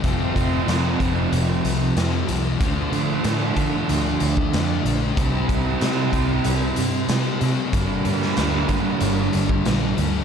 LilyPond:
<<
  \new Staff \with { instrumentName = "Overdriven electric guitar" } { \clef bass \time 4/4 \key d \minor \tempo 4 = 94 <f, c f a c'>1 | <d f a d'>1 | <c g c' e'>1 | <g, d g bes d'>1 | }
  \new Staff \with { instrumentName = "Distorted electric guitar" } { \clef bass \time 4/4 \key d \minor <f, c f>8 <c f>8 <f, c f>8 <c f>4. <f, c f>8 <c f>8 | <d a d'>8 <a d'>8 <d a d'>8 <a d'>4. <d a d'>8 <a d'>8 | <c g c'>8 <g c'>8 <c g c'>8 <g c'>4. <c g c'>8 <g c'>8 | <g, d g>8 <d g>8 <g, d g>8 <d g>4. <g, d g>8 <d g>8 | }
  \new Staff \with { instrumentName = "Picked electric bass" } { \clef bass \time 4/4 \key d \minor f,,8 f,,8 f,8 f,,8 f,,8 c,8 f,8 c,8 | d,8 d8 a,8 d8 d,8 d,8 f,8 bes,,8 | c,8 c,8 c8 c,8 c,8 g,8 c8 c8 | g,,8 g,8 d,8 g,8 g,,8 g,,8 bes,,8 d,8 | }
  \new DrumStaff \with { instrumentName = "Drums" } \drummode { \time 4/4 <hh bd>8 <hh bd>8 <hh sn>8 <hh bd>8 hh8 hh8 <hh sn>8 hh8 | <hh bd>8 hh8 <hh sn>8 <hh bd>8 hh8 hh16 bd16 <hh sn>8 hh8 | <hh bd>8 <hh bd>8 <hh sn>8 <hh bd>8 hh8 hh8 <hh sn>8 hh8 | <hh bd>8 hh16 sn16 <hh sn>8 <hh bd>8 hh8 hh16 bd16 <hh sn>8 hh8 | }
>>